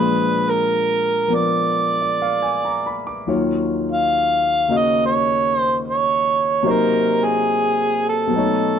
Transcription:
Already playing: grand piano A#2 F3 G#3 D4 G#4, harmonica B4
0.50 harmonica A#4
1.28 grand piano F3 B3 A#4
1.35 harmonica D5
2.01 grand piano D5
2.22 grand piano F5
2.42 grand piano G#5
2.65 grand piano A#5
2.86 grand piano B5
3.07 grand piano D6
3.27 grand piano D#2 D#3 F#3 F4 C#5
3.92 harmonica F5
4.68 grand piano C#3 A#3 F#4 D#5
4.77 harmonica D#5
5.06 harmonica C#5
5.58 harmonica C5
5.88 harmonica C#5
6.63 grand piano C3 F#3 A#3 D#4
6.67 grand piano C5
6.71 harmonica A#4
7.25 harmonica G#4
8.09 harmonica A4
8.27 grand piano B2 F#3
8.33 grand piano A3 D#4
8.38 grand piano C#5

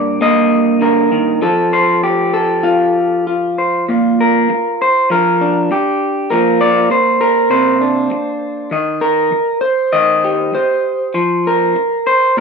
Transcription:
Already playing: clean electric guitar G2 A#3 A#4 D5
0.21 clean electric guitar A#3 D#5
0.81 clean electric guitar D3 A#4
1.12 clean electric guitar D#3
1.42 clean electric guitar F3 A4
1.73 clean electric guitar C5
2.03 clean electric guitar G4
2.34 clean electric guitar A4
2.63 clean electric guitar F4
3.27 clean electric guitar F4
3.58 clean electric guitar C5
3.89 clean electric guitar A#2 F4
4.21 clean electric guitar A#4
4.50 muted clean electric guitar stroke
4.82 clean electric guitar C5
5.10 clean electric guitar F3 A#4
5.41 clean electric guitar D4
5.71 clean electric guitar G4, muted clean electric guitar stroke
6.30 clean electric guitar F3 A#3 A#4
6.61 clean electric guitar D5
6.90 clean electric guitar C5, muted clean electric guitar stroke
7.21 clean electric guitar A#4
7.50 clean electric guitar C3 C5
7.81 clean electric guitar D4
8.11 muted clean electric guitar stroke
8.71 clean electric guitar D#3 D#5
9.01 clean electric guitar A#4
9.32 muted clean electric guitar stroke
9.61 clean electric guitar C5
9.93 clean electric guitar D#3 D#5
10.24 clean electric guitar G4
10.54 clean electric guitar C5, muted clean electric guitar stroke
11.14 clean electric guitar F3 C5
11.47 clean electric guitar A#4
11.76 muted clean electric guitar stroke
12.07 clean electric guitar C5
12.37 clean electric guitar A#2

